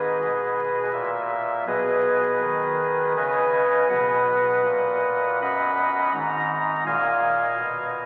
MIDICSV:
0, 0, Header, 1, 2, 480
1, 0, Start_track
1, 0, Tempo, 740741
1, 1083, Time_signature, 3, 2, 24, 8
1, 3007, Tempo, 773196
1, 3487, Tempo, 720288
1, 5248, End_track
2, 0, Start_track
2, 0, Title_t, "Pipe organ"
2, 0, Program_c, 0, 19
2, 0, Note_on_c, 0, 32, 67
2, 0, Note_on_c, 0, 44, 69
2, 0, Note_on_c, 0, 68, 83
2, 0, Note_on_c, 0, 71, 84
2, 0, Note_on_c, 0, 75, 97
2, 115, Note_off_c, 0, 32, 0
2, 117, Note_off_c, 0, 44, 0
2, 130, Note_on_c, 0, 47, 77
2, 580, Note_off_c, 0, 71, 0
2, 580, Note_off_c, 0, 75, 0
2, 582, Note_off_c, 0, 68, 0
2, 590, Note_off_c, 0, 47, 0
2, 601, Note_on_c, 0, 76, 115
2, 602, Note_on_c, 0, 46, 74
2, 1067, Note_off_c, 0, 76, 0
2, 1068, Note_off_c, 0, 46, 0
2, 1080, Note_on_c, 0, 35, 88
2, 1081, Note_on_c, 0, 47, 81
2, 1082, Note_on_c, 0, 68, 89
2, 1082, Note_on_c, 0, 75, 127
2, 1083, Note_on_c, 0, 71, 91
2, 1546, Note_off_c, 0, 35, 0
2, 1546, Note_off_c, 0, 47, 0
2, 1564, Note_on_c, 0, 51, 91
2, 2027, Note_off_c, 0, 68, 0
2, 2027, Note_off_c, 0, 71, 0
2, 2027, Note_off_c, 0, 75, 0
2, 2040, Note_off_c, 0, 51, 0
2, 2051, Note_on_c, 0, 49, 82
2, 2051, Note_on_c, 0, 80, 126
2, 2052, Note_on_c, 0, 71, 89
2, 2053, Note_on_c, 0, 75, 90
2, 2512, Note_off_c, 0, 49, 0
2, 2512, Note_off_c, 0, 80, 0
2, 2513, Note_off_c, 0, 71, 0
2, 2513, Note_off_c, 0, 75, 0
2, 2523, Note_on_c, 0, 78, 127
2, 2524, Note_on_c, 0, 47, 86
2, 2525, Note_on_c, 0, 35, 90
2, 2528, Note_on_c, 0, 75, 101
2, 2529, Note_on_c, 0, 71, 88
2, 2991, Note_off_c, 0, 47, 0
2, 2992, Note_off_c, 0, 35, 0
2, 3011, Note_on_c, 0, 46, 91
2, 3460, Note_off_c, 0, 78, 0
2, 3462, Note_off_c, 0, 75, 0
2, 3463, Note_off_c, 0, 71, 0
2, 3475, Note_off_c, 0, 46, 0
2, 3488, Note_on_c, 0, 42, 83
2, 3489, Note_on_c, 0, 75, 100
2, 3489, Note_on_c, 0, 78, 101
2, 3490, Note_on_c, 0, 83, 127
2, 3962, Note_off_c, 0, 42, 0
2, 3962, Note_off_c, 0, 75, 0
2, 3962, Note_off_c, 0, 78, 0
2, 3962, Note_off_c, 0, 83, 0
2, 3974, Note_on_c, 0, 32, 80
2, 3975, Note_on_c, 0, 44, 88
2, 3978, Note_on_c, 0, 82, 127
2, 4436, Note_off_c, 0, 32, 0
2, 4436, Note_off_c, 0, 44, 0
2, 4438, Note_off_c, 0, 82, 0
2, 4450, Note_on_c, 0, 46, 86
2, 4452, Note_on_c, 0, 77, 88
2, 4452, Note_on_c, 0, 80, 121
2, 4454, Note_on_c, 0, 75, 93
2, 4911, Note_off_c, 0, 46, 0
2, 4926, Note_on_c, 0, 47, 72
2, 5145, Note_off_c, 0, 80, 0
2, 5146, Note_off_c, 0, 75, 0
2, 5146, Note_off_c, 0, 77, 0
2, 5248, Note_off_c, 0, 47, 0
2, 5248, End_track
0, 0, End_of_file